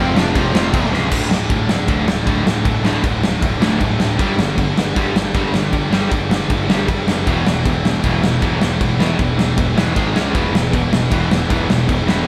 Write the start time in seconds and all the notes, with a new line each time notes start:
Already playing: F1 F2 C3 F3
0.01 C4
0.15 F1 F2 C3 F3 D4, snare
0.35 F1 F2 C3 F3 C4, kick, crash
0.53 F1 F2 C3 F3, snare
0.73 F1 F2 C3 F3, kick, crash
0.92 C#2 F2 C3 F3, snare
1.11 D1 D2 A2 D3, kick, crash
1.30 D1 D2 A2 D3, snare
1.50 D1 D2 A2 D3, kick, crash
1.69 D2 A2 D3, snare
1.88 D1 D2 A2 D3, kick, crash
2.07 D2 A2 D3, snare
2.26 D1 D2 A2 D3, kick, crash
2.46 D1 D2 A2 D3, snare
2.65 D1 D2 A2 D3, kick, crash
2.84 D2 A2 D3, snare
3.04 D1 D2 A2 D3, kick, crash
3.23 D2 A2 D3, snare
3.41 D1 D2 A2 D3, kick, crash
3.61 D1 D2 A2 D3, snare
3.80 D1 D2 A2 D3, kick, crash
4.00 D1 D2 A2 D3, snare
4.19 G1 G2 D3 G3, kick, crash
4.38 G1 G2 D3 G3, snare
4.58 G1 G2 D3 G3, kick, crash
4.77 G2 D3 G3, snare
4.96 G1 G2 D3 G3, kick, crash
5.15 G2 D3 G3, snare
5.34 G1 G2 D3 G3, kick, crash
5.53 G1 G2 D3 G3, snare
5.73 G1 G2 D3 G3, kick, crash
5.92 G2 D3 G3, snare
6.11 G1 G2 D3 G3, kick, crash
6.31 G2 D3 G3, snare
6.50 G1 G2 D3 G3, kick, crash
6.69 G1 G2 D3 G3, snare
6.88 G1 G2 D3 G3, kick, crash
7.08 F#1 G2 D3 G3, snare
7.27 E1 E2 B2 E3, kick, crash
7.46 E1 E2 B2 E3, snare
7.65 E1 E2 B2 E3, kick, crash
7.84 E2 B2 E3, snare
8.03 E1 E2 B2 E3, kick, crash
8.23 E2 B2 E3, snare
8.42 E1 E2 B2 E3, kick, crash
8.61 E1 E2 B2 E3, snare
8.80 E1 E2 B2 E3, kick, crash
8.99 E2 B2 E3, snare
9.18 E1 E2 B2 E3, kick, crash
9.36 E2 B2 E3, snare
9.57 E1 E2 B2 E3, kick, crash
9.76 E1 E2 B2 E3, snare
9.95 G#1 G#2 D#3 G#3, kick, crash
10.13 C#2 C#3 G#3 C#4, snare
10.34 E1 E2 B2 E3, kick, crash
10.52 E1 E2 B2 E3, snare
10.72 E1 E2 B2 E3, kick, crash
10.91 E2 B2 E3, snare
11.10 E1 E2 B2 E3, kick, crash
11.30 E2 B2 E3, snare
11.49 E1 E2 B2 E3, kick, crash
11.69 E1 E2 B2 E3, snare
11.88 E1 E2 B2 E3, kick, crash
12.07 E2 B2 E3, snare